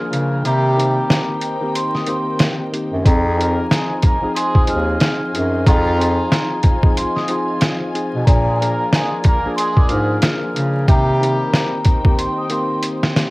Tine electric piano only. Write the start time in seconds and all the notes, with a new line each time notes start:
Already playing: G#4
0.10 F3 A#3 D4 G#4
0.44 D#3 A#3 C4 G4
0.77 D#3 A#3 C4 G4
1.61 D#3 A#3 C4 G4
2.07 D#3 A#3 C4 G4
2.71 D#3 A#3 C4 G4
3.03 F3 C4 D#4 G#4
3.37 F3 C4 D#4 G#4
4.22 F3 C4 D#4 G#4
4.67 F3 C4 D#4 G#4
5.00 F3 C4 D#4 G#4
5.33 F3 C4 D#4 G#4
5.65 F3 C4 D#4 G#4
5.98 F3 C4 D#4 G#4
6.83 F3 C4 D#4 G#4
7.28 F3 C4 D#4 G#4
7.93 F3 C4 D#4 G#4
8.27 F3 A#3 D4 G#4
8.60 F3 A#3 D4 G#4
9.45 F3 A#3 D4 G#4
9.89 F3 A#3 D4 G#4
10.22 F3 A#3 D4 G#4
10.54 F3 A#3 D4 G#4
10.88 D#3 A#3 C4 G4
11.21 D#3 A#3 C4 G4
12.04 D#3 A#3 C4 G4
12.50 D#3 A#3 C4 G4
13.15 D#3 A#3 C4 G4